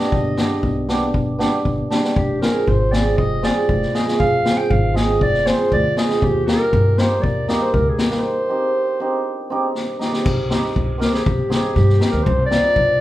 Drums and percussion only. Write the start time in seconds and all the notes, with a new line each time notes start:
0.00 snare
0.12 kick
0.37 snare
0.63 kick
0.89 snare
1.14 kick
1.40 snare
1.65 kick
1.91 snare
2.04 snare
2.16 kick
2.42 snare
2.68 kick
2.93 snare
3.18 kick
3.43 snare
3.69 kick
3.82 snare
3.95 snare
4.08 snare
4.20 kick
4.45 snare
4.71 kick
4.96 snare
5.21 kick
5.34 snare
5.46 snare
5.72 kick
5.97 snare
6.10 snare
6.22 kick
6.48 snare
6.73 kick
6.98 snare
7.24 kick
7.48 snare
7.74 kick
7.98 snare
8.11 snare
9.75 snare
10.01 snare
10.13 snare
10.26 kick, crash
10.51 snare
10.64 snare
10.76 kick
11.01 snare
11.14 snare
11.26 kick
11.51 snare
11.76 kick, snare
11.89 snare
12.01 snare
12.26 kick
12.51 snare
12.76 kick